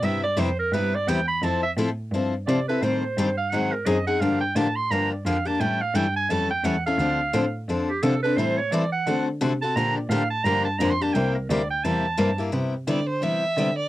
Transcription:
X:1
M:4/4
L:1/16
Q:"Swing" 1/4=173
K:C
V:1 name="Clarinet"
e2 d2 c2 _B2 =B2 d2 g2 b2 | [K:F] a2 e2 z8 d2 =B2 | c6 f2 _g2 B2 _e2 g2 | f2 g2 a2 c'2 b2 d2 f2 a2 |
g2 f2 g2 _a2 =a2 g2 _g2 f2- | f8 z2 G2 A2 =B2 | c2 _d2 =d2 _g4 z4 a2 | b2 d2 f2 a2 b2 a2 (3b2 c'2 a2 |
g2 B2 d2 g2 a6- a z | [K:C] z16 |]
V:2 name="Violin"
z16 | [K:F] z16 | z16 | z16 |
z16 | z16 | z16 | z16 |
z16 | [K:C] z4 d2 c2 e6 d2 |]
V:3 name="Steel-string acoustic guitar"
[C,G,B,EG]2 z2 [C,G,B,EG] z3 [C,G,B,EG]2 z2 [C,G,B,EG] z3 | [K:F] [F,CEA]2 z2 [F,CEA] z3 [F,CEA]2 z2 [F,CEA] z [CEA]2 | [_E,G,CGA]2 z2 [E,G,CGA] z3 [E,_G,C_E_A]2 z2 [E,G,CEA] z [CEA]2 | [D,F,B,DG]2 z2 [D,F,B,DG] z3 [D,F,B,DG]2 z2 [D,F,B,DG] z [B,DG]2 |
[E,G,^CEA]2 z2 [E,G,CEA] z3 [E,G,CEA]2 z2 [E,G,CEA] z [CEA]2 | [D,F,CDA]2 z2 [D,F,CDA] z3 [D,F,CDA]2 z2 [D,F,CDA] z [CDA]2 | [E,G,CEA]2 z2 [E,G,CEA] z3 [D,A,C^FA]2 z2 [D,A,CFA] z [CFA]2 | [D,F,B,DG]2 z2 [D,F,B,DG] z3 [D,F,B,DG]2 z2 [D,F,B,DG] z [B,DG]2 |
[C,G,B,EG]2 z2 [C,G,B,EG] z3 [C,G,B,EG]2 z2 [C,G,B,EG] z [B,EG]2 | [K:C] [C,G,B,EG]2 z2 [C,G,B,EG] z3 [C,G,B,EG]2 z2 [C,G,B,EG] z3 |]
V:4 name="Cello" clef=bass
G,,4 F,,4 G,,4 E,,4 | [K:F] F,,4 A,,4 G,,4 C,2 C,2 | A,,4 G,,4 _A,,4 _G,,4 | G,,4 A,,4 G,,4 F,,4 |
A,,4 G,,4 F,,4 E,,4 | D,,4 A,,4 F,,4 C,4 | A,,4 E,4 D,4 C,4 | B,,4 A,,4 G,,4 F,,4 |
C,,4 D,,4 E,,4 G,,4 | [K:C] C,4 D,4 E,4 D,4 |]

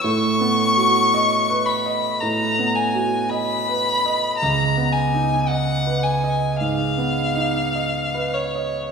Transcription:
X:1
M:4/4
L:1/8
Q:1/4=55
K:C#dor
V:1 name="Violin"
c'3 b a g b2 | a g f g ^e3 c |]
V:2 name="Grand piano"
(3=A,, B, F (3d B d (3A,, B, F (3d B d | (3C,, B, D (3d B d (3G,, B, D (3d B d |]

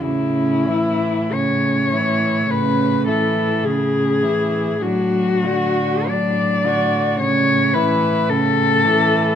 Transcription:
X:1
M:4/4
L:1/8
Q:1/4=52
K:A
V:1 name="Cello"
E2 c2 B A G2 | F2 d2 c B A2 |]
V:2 name="Cello"
C E C E C E C E | D F D F C E C E |]
V:3 name="Cello" clef=bass
C, E, C, E, C, E, C, E, | F, D, F, D, C, E, C, E, |]
V:4 name="Cello" clef=bass
A,,8 | A,,8 |]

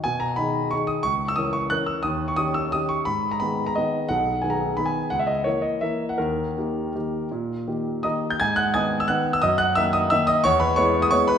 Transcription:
X:1
M:3/4
L:1/16
Q:1/4=174
K:G#m
V:1 name="Grand piano"
g2 a2 b4 c'2 d'2 | c'3 e' d'2 c'2 f'2 e'2 | d'3 c' d'2 e'2 d'2 c'2 | b3 a b3 a d4 |
f4 g a3 b g3 | f e d2 c2 d2 e3 f | A12- | A8 [dad']3 =g' |
[gg']2 [ff']2 [gd'g']3 e' [ff']3 e' | [dd']2 [ff']2 [ee']2 [dd']2 [ee']2 [dd']2 | [cc']2 [Bb]2 [cc']3 d' [cc']2 [Bb]2 |]
V:2 name="Grand piano"
B,,4 [D,DG]4 [D,DG]4 | C,,4 [E,CA]4 [E,CA]4 | D,,4 [D,C=G]4 [D,CG]4 | G,,4 [D,B,G]4 [D,B,G]4 |
B,,,4 [D,B,G]4 [D,B,G]4 | C,,4 [E,A,A]4 [E,A,A]4 | D,,4 [D,A,=G]4 [D,A,G]4 | A,,4 [D,A,=G]4 [D,A,G]4 |
G,,4 [D,B,D]4 [D,B,D]4 | F,,4 [D,A,D]4 [D,A,D]4 | E,,4 [G,B,E]4 [G,B,E]4 |]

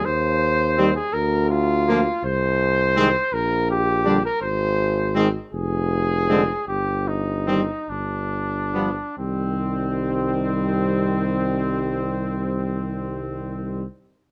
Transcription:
X:1
M:6/8
L:1/16
Q:3/8=51
K:Cm
V:1 name="Cornet"
c4- c A B2 F4 | c6 B2 G3 B | c4 z2 A6 | G2 E4 D6 |
C12- | C12 |]
V:2 name="Trumpet"
z4 C z4 z B, z | z4 C z4 z D z | z4 C z4 z C z | z4 C z4 z =B, z |
C12- | C12 |]
V:3 name="French horn" clef=bass
z4 G, z4 z B, z | z4 A, z4 z G, z | z4 A, z4 z A, z | z4 G, z4 z G, z |
G,12- | G,12 |]
V:4 name="Trombone" clef=bass
z4 E, z4 z F, z | z4 E, z4 z D, z | z4 E, z4 z D, z | z4 E, z4 z F, z |
E,12- | E,12 |]
V:5 name="Bass trombone" clef=bass
E,,6 D,,6 | C,,6 B,,,6 | A,,,6 F,,,6 | G,,,6 G,,,6 |
C,,12- | C,,12 |]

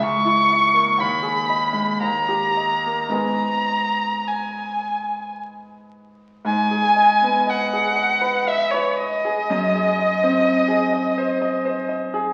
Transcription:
X:1
M:3/4
L:1/16
Q:1/4=60
K:G#m
V:1 name="Violin"
c'4 b4 a4 | a4 g4 z4 | g4 f4 e c d2- | d8- d2 z2 |]
V:2 name="Grand piano"
C,, E e A, D,, G d G, D,, =G d A, | [G,,B,Gd]12 | G,, G d B, d G d B d B d G | F,, G d ^B, d G d ^B d B d G |]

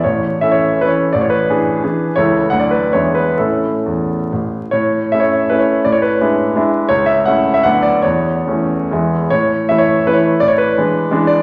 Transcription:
X:1
M:3/4
L:1/16
Q:1/4=159
K:A
V:1 name="Grand piano"
c4 e c3 B c3 | d c B8- B2 | c4 f d B2 c2 B2 | A8 z4 |
c4 e c3 B c3 | d c B8- B2 | c2 e2 f3 e f2 d2 | c8- c2 z2 |
c4 e c3 B c3 | d c B8 d2 |]
V:2 name="Grand piano"
A,,,4 [E,CA]4 [E,CA]4 | A,,,4 [E,DG]4 [E,DG]4 | [C,,E,EA]4 [D,,F,DF]4 [E,,G,DE]4 | [A,,CE]4 E,,4 A,,,4 |
A,,4 [A,CE]4 [A,CE]4 | A,,4 [G,DE]4 [G,DE]4 | C,,4 [A,CE]4 [D,,F,B,D]4 | E,,4 [E,A,C]4 [E,,E,G,E]4 |
A,,4 [E,A,E]4 [E,A,E]4 | A,,4 [E,G,D]4 [E,G,D]4 |]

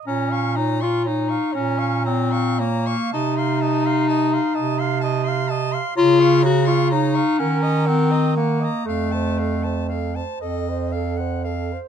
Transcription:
X:1
M:6/8
L:1/16
Q:3/8=40
K:Bbm
V:1 name="Soprano saxophone"
b d' b d' b d' b d' b d' b d' | =a c' a c' a c' a c' a c' a c' | b d' b d' b d' g b g b g b | f =a f a f a e2 f g f2 |]
V:2 name="Alto saxophone"
d f d f d f d f d f d f | e f e f e f e f e f e f | d f d f d f B e B e B e | =A c A c A c A c A c A c |]
V:3 name="Clarinet"
D2 E F E2 D2 C2 B,2 | E8- E2 z2 | F2 G F E2 D2 C2 B,2 | =A,6 z6 |]
V:4 name="Bass clarinet" clef=bass
B,,6 B,,6 | C,6 C,6 | D,6 E,6 | F,,6 F,,6 |]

